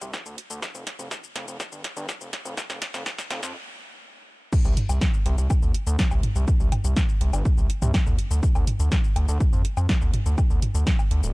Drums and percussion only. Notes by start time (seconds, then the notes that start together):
0.01 mid tom, shaker
0.13 kick, snare, shaker
0.26 shaker
0.38 closed hi-hat
0.50 shaker
0.62 kick, snare, shaker
0.75 shaker
0.87 snare, closed hi-hat
0.99 mid tom, shaker
1.11 kick, snare, shaker
1.24 shaker
1.36 snare, closed hi-hat
1.48 shaker
1.60 kick, snare, shaker
1.72 shaker
1.84 snare, closed hi-hat
1.97 shaker
2.09 kick, snare, shaker
2.21 shaker
2.33 snare, closed hi-hat
2.45 mid tom, shaker
2.57 kick, snare, shaker
2.70 snare, shaker
2.82 snare, closed hi-hat
2.94 snare, mid tom, shaker
3.06 kick, snare, shaker
3.18 snare, shaker
3.31 snare, closed hi-hat
3.43 snare, shaker
4.53 kick, crash, shaker
4.65 shaker
4.77 closed hi-hat, mid tom
4.89 low woodblock, shaker
5.01 kick, snare, shaker
5.14 shaker
5.26 closed hi-hat
5.38 shaker
5.50 kick, low woodblock, shaker
5.62 shaker
5.74 closed hi-hat
5.87 shaker
5.99 kick, snare, shaker
6.11 low woodblock, shaker
6.23 closed hi-hat, mid tom
6.36 shaker
6.48 kick, shaker
6.60 shaker
6.72 closed hi-hat, mid tom, low woodblock
6.84 shaker
6.97 kick, snare, shaker
7.09 shaker
7.21 closed hi-hat
7.33 low woodblock, shaker
7.45 kick, shaker
7.58 shaker
7.70 closed hi-hat
7.82 mid tom, shaker
7.94 kick, snare, low woodblock, shaker
8.07 mid tom, shaker
8.19 closed hi-hat
8.31 shaker
8.43 kick, shaker
8.55 low woodblock, shaker
8.67 closed hi-hat, mid tom
8.80 shaker
8.92 kick, snare, shaker
9.04 shaker
9.16 closed hi-hat, low woodblock
9.29 shaker
9.40 kick, shaker
9.53 shaker
9.65 closed hi-hat
9.77 low woodblock, shaker
9.89 kick, snare, shaker
10.02 shaker
10.14 closed hi-hat, mid tom
10.26 shaker
10.38 kick, low woodblock, shaker
10.50 shaker
10.62 closed hi-hat, mid tom
10.75 shaker
10.87 kick, snare, shaker
10.99 low woodblock, shaker
11.11 closed hi-hat
11.23 shaker